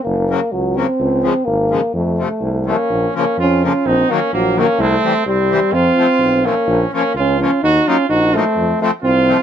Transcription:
X:1
M:2/4
L:1/8
Q:"Swing" 1/4=128
K:Fphr
V:1 name="Trumpet"
z4 | z4 | z3 D- | [K:Bbm] D D F F |
E D B, D | C2 C2 | F3 D- | D D F F |
G F G C- | C C F2 |]
V:2 name="Euphonium"
B,2 G, C- | C2 B,2 | =A,3 B,- | [K:Bbm] B, B, D D |
C B, G, B, | =A,2 =G,2 | C3 B,- | B, B, D D |
E D E =A,- | =A, A, C2 |]
V:3 name="Accordion" clef=bass
z [D,G,B,] z [D,G,B,] | z [D,F,A,] z [D,F,A,] | z [C,F,=A,] z [C,F,A,] | [K:Bbm] z [D,F,B,] z [D,F,B,] |
z [E,G,B,] z [E,G,B,] | z [=E,=G,C] z [E,G,C] | z [F,=A,C] z [F,A,C] | z [F,B,D] z [F,B,D] |
z [G,B,E] z [G,B,E] | z [F,=A,C] z [F,A,C] |]
V:4 name="Tuba" clef=bass
G,,,2 D,,2 | D,,2 A,,,2 | F,,2 C,,2 | [K:Bbm] B,,, z F,,2 |
B,,, z B,,,2 | C,, z C,,2 | F,, z _C,,2 | B,,, z D,,2 |
E,, z B,,,2 | F,, z C,,2 |]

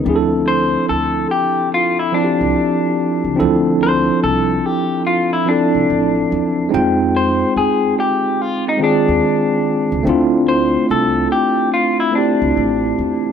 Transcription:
X:1
M:4/4
L:1/16
Q:"Swing 16ths" 1/4=72
K:Dm
V:1 name="Clean electric guitar"
z2 c2 A2 G2 F E D6 | z2 c2 A2 G2 F E D6 | z2 c2 _A2 G2 F _E D6 | z2 c2 A2 G2 F E D6 |]
V:2 name="Tine electric piano"
[F,CDE^GA]6 z4 [F,CDEF=G]4 z2 | [E,F,CDEA]6 z4 [F,CDEA]4 z2 | [_A,C_EFg]6 z4 [_E,A,CF_A]4 z2 | [A,CDEF]6 z4 [A,CDEG]4 z2 |]
V:3 name="Upright bass" clef=bass
D,,4 D,,2 z4 z C,, z3 ^C,, | D,,4 C,,2 z4 z C,, A,,,2 E,,2 | F,,4 F,,2 z4 z _E,, z3 ^C,, | D,,4 C,,2 z4 z C,, A,,,2 E,,2 |]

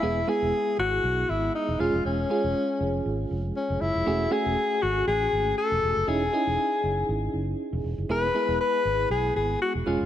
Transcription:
X:1
M:4/4
L:1/16
Q:"Swing 16ths" 1/4=119
K:E
V:1 name="Alto saxophone"
E2 G4 F4 E2 D2 ^E2 | C8 z4 C2 E2- | E2 G4 F2 G4 A4 | G8 z8 |
B4 B4 G2 G2 F2 ^E2 |]
V:2 name="FM electric piano"
[G,B,EG]2 [G,B,EG]4- [G,B,EG] z6 z [G,C^EG]2- | [G,C^EG]2 [G,CEG]4- [G,CEG] z8 z | [A,CFG]2 [A,CFG]4- [A,CFG] z8 z | [CDEG]2 [CDEG]4- [CDEG] z8 z |
[G,B,EG]2 [G,B,EG]4- [G,B,EG] z6 z [G,C^EG]2 |]
V:3 name="Fingered electric bass" clef=bass
E,,,2 z E,,, z2 G,,,2 B,,,2 G,,,2 z E,,, E,,, ^E,,, | E,,,2 z E,,, z2 ^E,,,2 G,,,2 E,,,2 z E,,, F,,, E,,, | E,,,2 z E,,, z2 G,,,2 A,,,2 G,,,2 z E,,, E,,, F,,, | E,,,2 z E,,, z2 F,,,2 G,,,2 F,,,2 z E,,, E,,, F,,, |
E,,,2 z E,,, z2 G,,,2 B,,,2 G,,,2 z E,,, E,,, ^E,,, |]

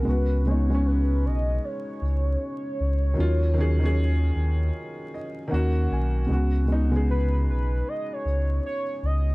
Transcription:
X:1
M:4/4
L:1/16
Q:"Swing 16ths" 1/4=77
K:Dbmix
V:1 name="Soft synth lead"
c2 d2 c2 e2 d8- | d12 z4 | z4 c2 c2 e d3 d2 e2 |]
V:2 name="Upright piano"
z16 | z8 z2 e2 g2 a2 | z16 |]
V:3 name="Upright piano"
[D,A,CG]2 [D,A,CE] [D,A,CD]6- [D,A,CD] z6 | [E,G,DF]2 [E,G,DA] [E,G,DA]6- [E,G,DA] z2 [E,B,DG]4 | [D,A,CG]2 [D,A,CE] [D,A,CA]6- [D,A,CA] z6 |]
V:4 name="Sub bass" clef=bass
D,,6 C,,2 z2 D,,2 z2 D,,2 | E,,6 E,,2 z4 E,,2 C,,2 | D,,6 C,,2 z2 D,,2 z2 D,,2 |]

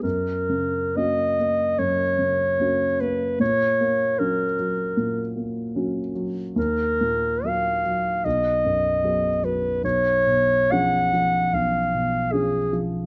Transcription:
X:1
M:4/4
L:1/8
Q:1/4=75
K:F#
V:1 name="Clarinet"
A2 d2 c3 B | c2 A3 z3 | A2 e2 d3 B | c2 f2 e2 G z |]
V:2 name="Grand piano" clef=bass
F,, C, [A,CF] A, F,, C, [A,CF] A, | A,, A, [F,CF] F, A,, A, [F,CF] F, | D,, A,, [F,A,A] F, B,,, F,, [F,B,G] F, | B,,, B,, [E,CG] E, B,,, B,, [E,CG] E, |]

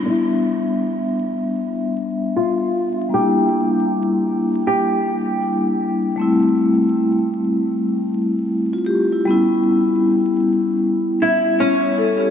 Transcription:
X:1
M:4/4
L:1/16
Q:"Swing 16ths" 1/4=78
K:Gmix
V:1 name="Hollow-body jazz guitar"
E12 F4 | G8 G6 z2 | z16 | z8 z2 E2 ^C4 |]
V:2 name="Vibraphone"
z16 | z16 | z12 z F G E- | E z12 ^c A G |]
V:3 name="Vibraphone"
[G,B,De]16 | [G,_B,DE]12 [G,B,DE]4 | [G,A,CE]16 | [G,B,^CE]16 |]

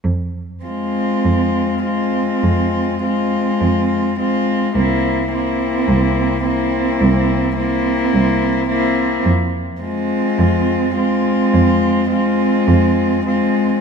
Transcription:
X:1
M:4/4
L:1/8
Q:1/4=52
K:Fm
V:1 name="Cello"
z F2 F2 F2 F | =E E2 E2 E2 E | z F2 F2 F2 F |]
V:2 name="Cello"
z C2 C2 C2 C | C C2 C2 C2 C | z C2 C2 C2 C |]
V:3 name="Cello" clef=bass
z A,2 A,2 A,2 A, | B, B,2 B,2 B,2 B, | z A,2 A,2 A,2 A, |]
V:4 name="Cello" clef=bass
F,,2 F,,2 F,,2 F,,2 | C,,2 C,,2 C,,2 C,,2 | F,,2 F,,2 F,,2 F,,2 |]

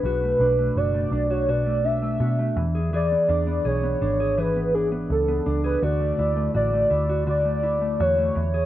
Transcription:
X:1
M:4/4
L:1/16
Q:1/4=83
K:Dlyd
V:1 name="Soft synth lead"
B4 d3 c d2 e4 z2 | d4 c4 B2 G2 A3 B | d4 d4 d4 c4 |]
V:2 name="Clean electric guitar"
[B,,F] A, D A, F A, D F [B,,F] A, D A, F A, E, G | [E,G] B, D B, G B, D G [E,G] B, D B,2 B, D G | [D,F] A, E A, F A, E F [D,F] A, E A, F A, E, G |]
V:3 name="Picked electric bass" clef=bass
B,,,2 B,,,2 F,,,2 B,,,6 B,,2 E,,2- | E,,2 E,,2 B,,,2 G,,,6 C,,2 C,,2 | D,,2 D,,2 A,,,2 D,,6 E,,2 E,,2 |]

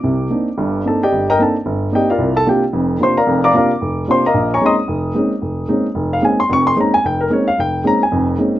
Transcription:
X:1
M:4/4
L:1/8
Q:"Swing" 1/4=223
K:Bb
V:1 name="Grand piano"
z6 [Aa] [Gdeg]- | [Gdeg] [Begb] [Aa] z3 [Gdeg] [FBdf]- | [FBdf] [Aa] [Gg] z3 [cc'] [Bdfb]- | [Bdfb] [dfbd'] [Bdfb] z3 [cc'] [Befb]- |
[K:Bbdor] [Befb] [dabd'] [ebc'e'] z4 z | z4 z f a c' | d' c' b a g B d f | g2 b a2 z3 |]
V:2 name="Grand piano"
[C,,C,]2 [B,CDE] z [G,,,G,,]2 [B,CDE] z | G,,,2 [B,CDE] z G,,,2 [B,CDE] z | C,,2 [C,B,DF] z [F,,,F,,]2 [C,B,DF] z | [F,,,F,,]2 [C,B,DF] z F,,,2 [C,B,DF] z |
[K:Bbdor] B,,,2 [A,B,CDE] z F,,,2 [A,B,CDE] z | F,,,2 [A,B,CDE] z F,,,2 [A,B,CDE] z | [F,,,F,,]2 [A,B,CDE] z F,,,2 [A,B,CDE] z | F,,,2 [A,B,CDE] z [F,,,F,,]2 [A,B,CDE] z |]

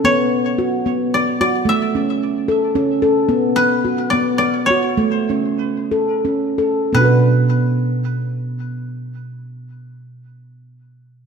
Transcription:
X:1
M:3/4
L:1/8
Q:"Swing 16ths" 1/4=101
K:Bm
V:1 name="Koto"
c4 d d | e4- e z | z B2 d d c- | c4 z2 |
B6- | B6 |]
V:2 name="Handpan"
z2 F B,2 F- | F C2 A C A | B,2 F B,2 F- | F C2 A C A |
z6 | z6 |]
V:3 name="Handpan"
B,4 z2 | A,4 z2 | z6 | A,4 z2 |
[B,,B,DFB]6- | [B,,B,DFB]6 |]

